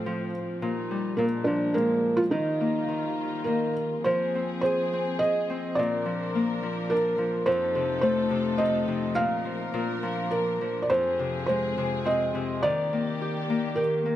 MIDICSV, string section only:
0, 0, Header, 1, 2, 480
1, 0, Start_track
1, 0, Tempo, 563380
1, 528, Time_signature, 3, 2, 24, 8
1, 1967, Tempo, 581395
1, 3887, Tempo, 564440
1, 7247, Tempo, 580271
1, 9647, Tempo, 567644
1, 11906, End_track
2, 0, Start_track
2, 0, Title_t, "String section"
2, 0, Program_c, 0, 48
2, 0, Note_on_c, 0, 45, 63
2, 0, Note_on_c, 0, 53, 60
2, 0, Note_on_c, 0, 60, 66
2, 516, Note_off_c, 0, 45, 0
2, 516, Note_off_c, 0, 53, 0
2, 516, Note_off_c, 0, 60, 0
2, 523, Note_on_c, 0, 46, 68
2, 523, Note_on_c, 0, 55, 55
2, 527, Note_on_c, 0, 63, 68
2, 993, Note_on_c, 0, 56, 58
2, 993, Note_on_c, 0, 62, 68
2, 995, Note_off_c, 0, 55, 0
2, 997, Note_off_c, 0, 63, 0
2, 1949, Note_off_c, 0, 46, 0
2, 1952, Note_off_c, 0, 56, 0
2, 1952, Note_off_c, 0, 62, 0
2, 1965, Note_on_c, 0, 55, 55
2, 1970, Note_on_c, 0, 51, 65
2, 1972, Note_on_c, 0, 65, 69
2, 3396, Note_off_c, 0, 55, 0
2, 3399, Note_off_c, 0, 51, 0
2, 3400, Note_off_c, 0, 65, 0
2, 3407, Note_on_c, 0, 68, 69
2, 3408, Note_on_c, 0, 60, 62
2, 3409, Note_on_c, 0, 53, 65
2, 4835, Note_off_c, 0, 60, 0
2, 4835, Note_off_c, 0, 68, 0
2, 4840, Note_on_c, 0, 70, 73
2, 4843, Note_on_c, 0, 62, 62
2, 6266, Note_off_c, 0, 70, 0
2, 6267, Note_off_c, 0, 62, 0
2, 6279, Note_on_c, 0, 63, 60
2, 6281, Note_on_c, 0, 69, 73
2, 7702, Note_off_c, 0, 69, 0
2, 7707, Note_on_c, 0, 70, 75
2, 8170, Note_off_c, 0, 63, 0
2, 8183, Note_on_c, 0, 62, 57
2, 9145, Note_off_c, 0, 70, 0
2, 9150, Note_off_c, 0, 62, 0
2, 9154, Note_on_c, 0, 60, 58
2, 9156, Note_on_c, 0, 68, 75
2, 10581, Note_off_c, 0, 53, 0
2, 10596, Note_off_c, 0, 60, 0
2, 10597, Note_off_c, 0, 68, 0
2, 10607, Note_on_c, 0, 67, 75
2, 10609, Note_on_c, 0, 51, 69
2, 10610, Note_on_c, 0, 58, 61
2, 11906, Note_off_c, 0, 51, 0
2, 11906, Note_off_c, 0, 58, 0
2, 11906, Note_off_c, 0, 67, 0
2, 11906, End_track
0, 0, End_of_file